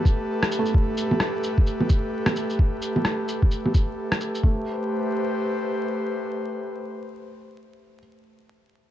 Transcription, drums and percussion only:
0.05 kick loud
0.05 shaker medium
0.43 cross-stick loud
0.52 shaker medium
0.66 shaker soft
0.74 kick loud
0.97 shaker medium
1.11 low bongo medium
1.20 cross-stick loud
1.43 shaker medium
1.58 kick loud
1.67 shaker soft
1.80 low bongo soft
1.89 kick loud
1.89 shaker medium
2.26 cross-stick loud
2.26 low bongo medium
2.36 shaker medium
2.50 shaker soft
2.59 kick loud
2.82 shaker soft
2.96 low bongo medium
3.05 cross-stick medium
3.28 shaker medium
3.42 kick loud
3.51 shaker soft
3.66 low bongo soft
3.74 kick loud
3.74 shaker soft
4.12 cross-stick loud
4.21 shaker soft
4.35 shaker soft
4.43 kick loud

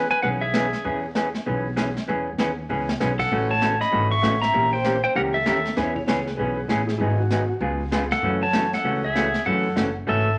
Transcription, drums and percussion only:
0.23 brush sweep medium
0.54 snare medium
0.54 hi-hat pedal medium
0.73 snare soft
0.84 brush sweep soft
1.15 snare medium
1.15 hi-hat pedal medium
1.34 snare soft
1.46 brush sweep medium
1.77 snare medium
1.77 hi-hat pedal soft
1.97 snare soft
2.08 brush sweep soft
2.38 snare medium
2.38 hi-hat pedal medium
2.89 snare medium
3.00 snare medium
3.00 hi-hat pedal medium
3.19 kick medium
3.19 crash medium
3.31 brush sweep medium
3.62 snare medium
3.62 hi-hat pedal medium
3.81 snare soft
3.93 brush sweep medium
4.23 snare medium
4.23 hi-hat pedal medium
4.42 snare soft
4.54 brush sweep medium
4.84 snare medium
4.84 hi-hat pedal medium
5.16 brush sweep soft
5.46 snare medium
5.46 hi-hat pedal medium
5.65 snare soft
5.77 brush sweep soft
5.77 snare soft
5.96 kick medium
6.08 snare medium
6.08 hi-hat pedal medium
6.27 snare soft
6.38 brush sweep soft
6.69 snare medium
6.69 hi-hat pedal soft
6.89 snare soft
7.00 brush sweep medium
7.31 snare medium
7.31 hi-hat pedal medium
7.61 brush sweep medium
7.92 snare medium
7.92 hi-hat pedal medium
8.11 snare soft
8.22 brush sweep medium
8.53 snare medium
8.53 hi-hat pedal medium
8.73 snare soft
8.85 brush sweep soft
9.16 snare medium
9.16 hi-hat pedal medium
9.34 snare soft
9.46 brush sweep soft
9.77 snare medium
9.77 hi-hat pedal medium
10.07 brush sweep medium

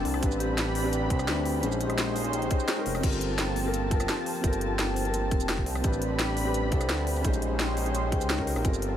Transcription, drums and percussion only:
0.05 open hi-hat medium
0.14 cross-stick medium
0.23 kick loud
0.23 closed hi-hat loud
0.23 shaker medium
0.31 shaker medium
0.40 closed hi-hat medium
0.40 shaker soft
0.58 snare loud
0.58 closed hi-hat loud
0.58 shaker medium
0.75 open hi-hat medium
0.93 closed hi-hat loud
0.93 shaker medium
1.10 kick loud
1.10 closed hi-hat medium
1.19 cross-stick soft
1.19 shaker medium
1.28 snare loud
1.28 closed hi-hat medium
1.28 shaker medium
1.46 open hi-hat medium
1.63 closed hi-hat loud
1.63 shaker medium
1.72 shaker medium
1.81 closed hi-hat medium
1.81 shaker soft
1.90 cross-stick medium
1.90 closed hi-hat soft
1.98 snare loud
1.98 closed hi-hat loud
1.98 shaker medium
2.16 open hi-hat medium
2.16 shaker soft
2.24 closed hi-hat soft
2.33 closed hi-hat loud
2.33 shaker medium
2.42 closed hi-hat soft
2.51 kick loud
2.51 closed hi-hat medium
2.51 shaker soft
2.60 shaker medium
2.68 snare loud
2.68 closed hi-hat loud
2.68 shaker medium
2.86 open hi-hat medium
2.95 cross-stick medium
2.95 shaker soft
3.03 kick loud
3.03 closed hi-hat loud
3.03 crash loud
3.03 shaker soft
3.12 shaker medium
3.21 closed hi-hat medium
3.38 snare loud
3.38 closed hi-hat loud
3.38 shaker soft
3.56 open hi-hat medium
3.56 shaker soft
3.74 closed hi-hat loud
3.74 shaker soft
3.91 kick loud
3.91 closed hi-hat medium
3.91 shaker soft
4.00 cross-stick medium
4.00 closed hi-hat soft
4.00 shaker medium
4.09 snare loud
4.09 closed hi-hat loud
4.09 shaker medium
4.26 open hi-hat medium
4.35 shaker soft
4.44 kick loud
4.44 closed hi-hat medium
4.44 shaker soft
4.53 closed hi-hat soft
4.53 shaker medium
4.61 closed hi-hat medium
4.79 snare loud
4.79 closed hi-hat loud
4.79 shaker soft
4.96 open hi-hat medium
4.96 shaker soft
5.05 closed hi-hat soft
5.14 closed hi-hat loud
5.14 shaker soft
5.31 kick loud
5.31 closed hi-hat medium
5.31 shaker soft
5.40 closed hi-hat soft
5.40 shaker medium
5.49 snare loud
5.49 closed hi-hat medium
5.49 shaker soft
5.58 kick medium
5.66 open hi-hat medium
5.75 cross-stick medium
5.75 shaker soft
5.84 kick loud
5.84 closed hi-hat medium
5.84 shaker soft
5.93 shaker medium
6.02 closed hi-hat medium
6.19 snare loud
6.19 closed hi-hat medium
6.19 shaker soft
6.37 open hi-hat medium
6.37 shaker soft
6.54 closed hi-hat medium
6.54 shaker soft
6.72 kick loud
6.72 closed hi-hat medium
6.72 shaker soft
6.81 cross-stick soft
6.81 closed hi-hat soft
6.81 shaker medium
6.89 snare loud
6.89 closed hi-hat medium
6.89 shaker soft
7.07 open hi-hat medium
7.16 shaker soft
7.24 kick loud
7.24 closed hi-hat medium
7.24 shaker soft
7.33 closed hi-hat soft
7.33 shaker medium
7.42 closed hi-hat medium
7.60 snare loud
7.60 closed hi-hat medium
7.60 shaker soft
7.77 open hi-hat medium
7.77 shaker soft
7.86 closed hi-hat soft
7.95 closed hi-hat medium
7.95 shaker soft
8.12 kick loud
8.12 closed hi-hat medium
8.12 shaker soft
8.21 closed hi-hat soft
8.21 shaker medium
8.30 snare loud
8.30 closed hi-hat medium
8.30 shaker soft
8.39 kick medium
8.47 open hi-hat medium
8.56 cross-stick medium
8.56 shaker soft
8.65 kick loud
8.65 closed hi-hat medium
8.65 shaker soft
8.74 shaker medium
8.82 closed hi-hat medium

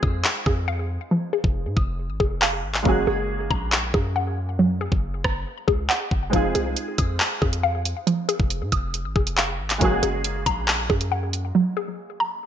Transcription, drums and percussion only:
0.03 kick medium
0.25 clap loud
0.46 kick loud
1.44 kick loud
1.77 kick medium
2.20 kick medium
2.42 clap loud
2.75 clap medium
2.85 kick loud
3.51 kick medium
3.72 clap loud
3.94 kick loud
4.92 kick loud
5.24 kick medium
5.24 cross-stick loud
5.68 kick medium
5.90 clap loud
6.11 kick loud
6.33 kick loud
6.33 closed hi-hat medium
6.55 closed hi-hat medium
6.77 closed hi-hat medium
6.98 kick medium
6.98 closed hi-hat medium
7.20 clap loud
7.42 kick loud
7.53 closed hi-hat medium
7.85 closed hi-hat medium
8.07 closed hi-hat medium
8.29 closed hi-hat medium
8.40 kick loud
8.50 closed hi-hat medium
8.72 kick medium
8.72 closed hi-hat medium
8.94 closed hi-hat medium
9.16 kick medium
9.27 closed hi-hat medium
9.38 clap loud
9.70 clap medium
9.70 closed hi-hat medium
9.81 kick loud
9.81 closed hi-hat medium
10.03 closed hi-hat medium
10.24 closed hi-hat medium
10.46 kick medium
10.46 closed hi-hat medium
10.68 clap loud
10.90 kick medium
11.01 closed hi-hat medium
11.33 closed hi-hat medium

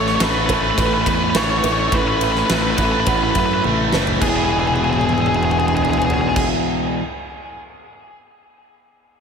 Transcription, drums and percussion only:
0.06 snare soft
0.20 snare loud
0.20 ride loud
0.49 kick medium
0.49 ride medium
0.78 kick loud
0.78 ride loud
1.06 kick loud
1.06 ride medium
1.35 snare loud
1.35 ride loud
1.64 ride medium
1.92 kick loud
1.92 ride loud
2.21 ride medium
2.35 snare soft
2.50 snare loud
2.50 ride loud
2.78 kick medium
2.78 ride medium
3.06 kick loud
3.06 ride loud
3.35 kick medium
3.35 ride medium
3.64 high tom medium
3.93 snare loud
4.07 floor tom loud
4.21 kick loud
4.21 crash loud
4.51 high tom soft
4.59 high tom medium
4.67 high tom medium
4.76 high tom medium
4.84 high tom medium
4.93 mid tom medium
5.01 mid tom medium
5.09 mid tom medium
5.18 mid tom medium
5.26 mid tom medium
5.34 mid tom medium
5.43 mid tom medium
5.51 mid tom medium
5.60 mid tom medium
5.68 mid tom medium
5.77 floor tom medium
5.85 floor tom medium
5.93 floor tom medium
6.02 floor tom loud
6.10 floor tom loud
6.36 kick loud
6.36 crash loud

